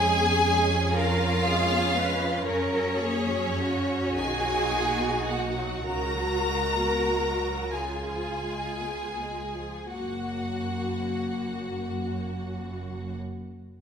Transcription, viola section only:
0.00 0.21 G#3 medium
0.00 4.16 C#4 medium
0.22 0.46 B3 medium
0.48 0.71 G#3 medium
0.71 0.95 F3 medium
0.95 1.19 C#3 medium
1.20 1.45 F3 medium
1.45 1.70 G#3 medium
1.71 1.95 B3 medium
1.96 2.21 G#3 medium
2.20 2.46 F3 medium
2.47 2.71 C#3 medium
2.72 3.00 F#3 medium
3.00 3.28 A#3 medium
3.29 3.58 F#3 medium
3.60 3.88 C#3 medium
3.87 4.16 F#3 medium
4.16 4.42 D#3 medium
4.16 5.86 D#4 medium
4.45 4.72 F#3 medium
4.73 5.00 A#3 medium
5.01 5.28 B3 medium
5.29 5.57 A#3 medium
5.57 5.86 F#3 soft
5.86 6.13 C#3 medium
5.86 7.70 F#4 medium
6.16 6.46 F#3 medium
6.46 6.77 G#3 soft
6.76 7.08 B3 soft
7.09 7.41 G#3 soft
7.41 7.74 F#3 soft
7.74 8.06 C#3 medium
7.74 9.63 F4 medium
8.09 8.44 F3 soft
8.44 8.80 G#3 soft
8.81 9.19 B3 soft
9.20 9.57 G#3 soft
9.56 9.90 F3 soft
9.90 13.13 A#3 soft
9.90 13.13 F#4 soft

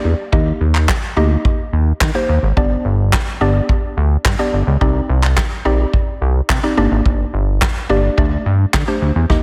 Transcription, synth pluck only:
0.00 0.12 A#3 medium
0.00 0.12 D4 medium
0.00 0.12 G4 medium
0.00 0.12 D5 loud
0.32 0.75 A#3 medium
0.32 0.75 D#4 medium
0.32 0.75 G4 medium
0.32 0.75 D#5 loud
1.17 1.66 A#3 medium
1.17 1.66 D#4 medium
1.17 1.66 G4 medium
1.17 1.66 D#5 loud
2.15 2.36 A#3 medium
2.15 2.36 D#4 medium
2.15 2.36 G4 medium
2.15 2.36 C5 loud
2.57 2.99 B3 medium
2.57 2.99 D4 medium
2.57 2.99 G4 medium
2.57 2.99 D5 loud
3.41 3.90 B3 medium
3.41 3.90 D4 medium
3.41 3.90 G4 medium
3.41 3.90 D5 loud
4.39 4.60 B3 medium
4.39 4.60 D4 medium
4.39 4.60 G4 medium
4.39 4.60 D5 loud
4.81 5.23 C4 medium
4.81 5.23 D#4 medium
4.81 5.24 G4 medium
4.81 5.24 D5 loud
5.65 6.15 C4 medium
5.65 6.15 D#4 medium
5.65 6.15 G4 medium
5.65 6.15 D5 loud
6.63 6.77 C4 medium
6.63 6.78 D#4 medium
6.63 6.76 G4 medium
6.63 6.77 D5 loud
6.77 7.67 A#3 loud
6.77 7.67 D4 medium
6.77 7.67 G4 medium
6.77 7.67 D5 loud
7.89 8.18 A#3 medium
7.89 8.16 D4 medium
7.89 8.17 G4 medium
7.89 8.17 D5 loud
8.18 8.74 A3 medium
8.18 8.74 D4 medium
8.18 8.74 G4 medium
8.18 8.74 D5 loud
8.88 9.09 A3 medium
8.88 9.09 D4 medium
8.88 9.09 G4 medium
8.88 9.09 C5 loud
9.30 9.43 A#3 medium
9.30 9.43 D#4 medium
9.30 9.43 G4 medium
9.30 9.43 D#5 medium

